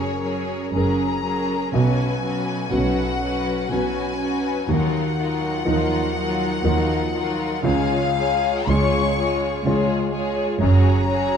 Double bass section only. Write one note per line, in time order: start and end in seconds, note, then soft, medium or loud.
0.00 0.61 F#1 medium
0.76 1.61 F#1 soft
1.75 2.59 B1 medium
2.74 3.59 B1 medium
3.73 4.57 B1 medium
4.71 5.54 D#2 medium
5.68 6.52 D#2 medium
6.65 7.50 D#2 medium
7.64 8.54 C#2 medium
8.68 9.52 C#2 medium
9.67 10.48 C#2 medium
10.63 11.37 F#1 medium